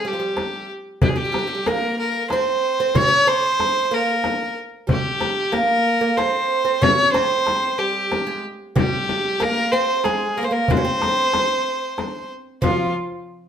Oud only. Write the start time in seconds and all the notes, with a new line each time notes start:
0.05 G3
0.13 F3
0.20 G3
1.03 G3
1.16 G3
1.25 G3
1.32 G3
1.39 G3
1.47 G3
1.55 G3
1.67 A#3
2.33 C4
2.80 C4
2.95 C#4
3.01 C4
3.08 C#4
3.27 C4
3.91 A#3
4.87 G3
5.52 A#3
6.01 A#3
6.17 C4
6.65 C4
6.82 C#4
7.14 C4
7.78 G3
8.27 G#3
8.76 G3
9.40 A#3
9.73 C4
10.05 G#3
10.38 G#3 A#3
10.43 A#3
10.51 A#3
10.70 C4
10.77 C#4
10.85 C4
12.62 F3